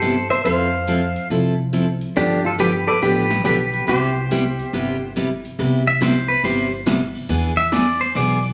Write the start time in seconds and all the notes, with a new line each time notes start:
Already playing: G2 G4 A4 C5
0.02 C3 G3 B3 E4 G4, closed hi-hat
0.30 C5 E5
0.45 F2 F3 C4 E4 A4 C5 F5, open hi-hat
0.87 F3 C4 E4 A4, closed hi-hat
1.16 open hi-hat
1.30 C2 F3 C4 E4 A4, open hi-hat
1.73 F3 C4 E4 A4, closed hi-hat
2.01 open hi-hat
2.16 G2 D3 F3 B3 D4 G4, open hi-hat
2.46 F4 A4
2.58 D3 F3 B3 D4 G4 B4, closed hi-hat
2.87 A4 B4 D5
3.02 A1 D3 F3 B3 D4 G4 B4, open hi-hat
3.30 snare
3.45 B1 D3 F3 B3 D4 G4 B4, closed hi-hat
3.74 open hi-hat
3.87 C2 C3 G3 B3 E4 G4 C5, open hi-hat
4.31 C3 G3 B3 E4 G4, closed hi-hat
4.59 open hi-hat
4.73 G1 C3 G3 B3 E4 G4, open hi-hat
5.16 C3 G3 B3 E4 G4, closed hi-hat
5.45 open hi-hat
5.59 C2 C3 G3 B3 E4 G4, ride
5.87 E5
6.01 C3 G3 B3 E4 G4 C5, snare, hi-hat pedal, ride
6.28 B4
6.43 G1 C3 G3 B3 E4 G4 C5, ride
6.86 C3 G3 B3 E4 G4, snare, hi-hat pedal, ride
7.15 ride
7.29 E2 E3 B3 D4 G#4, ride
7.57 E5
7.72 E3 B3 D4 G#4 D5, snare, hi-hat pedal, ride
8.00 C5, ride
8.14 B1 E3 B3 D4 G#4 D5, ride
8.43 ride